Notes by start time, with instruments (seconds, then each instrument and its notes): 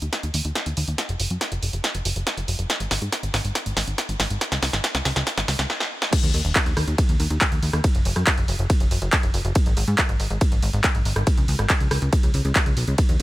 0.02 analog synth bass D#2, closed hi-hat
0.13 snare, closed hi-hat
0.23 analog synth bass D#2, closed hi-hat
0.34 analog synth bass D#2, open hi-hat
0.45 analog synth bass D#2, closed hi-hat
0.55 snare, closed hi-hat
0.66 analog synth bass D#2, closed hi-hat
0.77 analog synth bass D#2, open hi-hat
0.88 analog synth bass D#2, closed hi-hat
0.98 snare, closed hi-hat
1.09 analog synth bass F#1, closed hi-hat
1.20 analog synth bass F#1, open hi-hat
1.30 analog synth bass F#2, closed hi-hat
1.41 snare, closed hi-hat
1.52 analog synth bass F#1, closed hi-hat
1.63 analog synth bass F#1, open hi-hat
1.73 analog synth bass F#1, closed hi-hat
1.84 snare, closed hi-hat
1.95 analog synth bass F#1, closed hi-hat
2.05 analog synth bass F#1, open hi-hat
2.16 analog synth bass F#1, closed hi-hat
2.27 snare, closed hi-hat
2.37 analog synth bass F#1, closed hi-hat
2.48 analog synth bass F#1, open hi-hat
2.59 analog synth bass F#1, closed hi-hat
2.70 snare, closed hi-hat
2.80 analog synth bass G#1, closed hi-hat
2.91 analog synth bass G#1, snare, open hi-hat
3.02 analog synth bass G#2, closed hi-hat
3.12 snare, closed hi-hat
3.23 analog synth bass G#1, closed hi-hat
3.34 analog synth bass G#1, snare, open hi-hat
3.45 analog synth bass G#1, closed hi-hat
3.55 snare, closed hi-hat
3.66 analog synth bass G#1, closed hi-hat
3.77 analog synth bass G#1, snare, open hi-hat
3.88 analog synth bass G#1, closed hi-hat
3.98 snare, closed hi-hat
4.09 analog synth bass G#1, closed hi-hat
4.20 analog synth bass G#1, snare, open hi-hat
4.30 analog synth bass G#1, closed hi-hat
4.41 snare, closed hi-hat
4.52 analog synth bass C#2, snare, closed hi-hat
4.63 analog synth bass C#2, snare, open hi-hat
4.73 analog synth bass G#1, snare, closed hi-hat
4.84 snare, closed hi-hat
4.95 analog synth bass C#2, snare, closed hi-hat
5.05 analog synth bass C#2, snare, open hi-hat
5.16 analog synth bass C#2, snare, closed hi-hat
5.27 snare, closed hi-hat
5.38 analog synth bass G#1, snare, closed hi-hat
5.48 analog synth bass C#2, snare, open hi-hat
5.59 analog synth bass C#2, snare, closed hi-hat
5.70 snare
5.80 snare
6.02 snare
6.13 kick, closed hi-hat, crash, ride
6.23 analog synth bass D#2, closed hi-hat
6.34 analog synth bass D#2, open hi-hat
6.45 analog synth bass D#1, closed hi-hat
6.55 kick, clap, closed hi-hat, ride
6.66 analog synth bass D#2, closed hi-hat
6.77 analog synth bass D#2, cross-stick, open hi-hat
6.88 analog synth bass D#2, closed hi-hat
6.98 kick, closed hi-hat, ride
7.09 analog synth bass D#2, closed hi-hat
7.20 analog synth bass D#2, open hi-hat
7.30 analog synth bass D#2, closed hi-hat
7.41 kick, cross-stick, clap, closed hi-hat, ride
7.52 analog synth bass D#2, closed hi-hat
7.63 analog synth bass D#2, open hi-hat
7.73 analog synth bass D#2, cross-stick, closed hi-hat
7.84 kick, closed hi-hat, ride
7.95 analog synth bass F#1, closed hi-hat
8.05 analog synth bass F#1, open hi-hat
8.16 analog synth bass F#2, cross-stick, closed hi-hat
8.27 kick, clap, closed hi-hat, ride
8.38 analog synth bass F#1, closed hi-hat
8.48 analog synth bass F#1, open hi-hat
8.59 analog synth bass F#1, closed hi-hat
8.70 kick, closed hi-hat, ride
8.80 analog synth bass F#1, closed hi-hat
8.91 analog synth bass F#1, open hi-hat
9.02 analog synth bass F#1, closed hi-hat
9.13 kick, clap, closed hi-hat, ride
9.23 analog synth bass F#1, closed hi-hat
9.34 analog synth bass F#1, open hi-hat
9.45 analog synth bass F#1, closed hi-hat
9.55 kick, closed hi-hat, ride
9.66 analog synth bass G#1, closed hi-hat
9.77 analog synth bass G#1, open hi-hat
9.88 analog synth bass G#2, closed hi-hat
9.98 kick, clap, closed hi-hat, ride
10.09 analog synth bass G#1, closed hi-hat
10.20 analog synth bass G#1, open hi-hat
10.30 analog synth bass G#1, closed hi-hat
10.41 kick, closed hi-hat, ride
10.52 analog synth bass G#1, closed hi-hat
10.62 analog synth bass G#1, open hi-hat
10.73 analog synth bass G#1, closed hi-hat
10.84 kick, cross-stick, clap, closed hi-hat, ride
10.95 analog synth bass G#1, closed hi-hat
11.05 analog synth bass G#1, open hi-hat
11.16 analog synth bass G#1, cross-stick, closed hi-hat
11.27 kick, closed hi-hat, ride
11.37 analog synth bass C#2, closed hi-hat
11.48 analog synth bass C#2, open hi-hat
11.59 analog synth bass G#1, cross-stick, closed hi-hat
11.70 kick, clap, closed hi-hat, ride
11.80 analog synth bass C#2, closed hi-hat
11.91 analog synth bass C#2, cross-stick, open hi-hat
12.02 analog synth bass C#2, closed hi-hat
12.13 kick, closed hi-hat, ride
12.23 analog synth bass C#2, closed hi-hat
12.34 analog synth bass C#2, open hi-hat
12.45 analog synth bass C#2, closed hi-hat
12.55 kick, clap, closed hi-hat, ride
12.66 analog synth bass C#2, closed hi-hat
12.77 analog synth bass B1, open hi-hat
12.87 analog synth bass C#2, closed hi-hat
12.98 kick, closed hi-hat, ride
13.09 analog synth bass D#2, closed hi-hat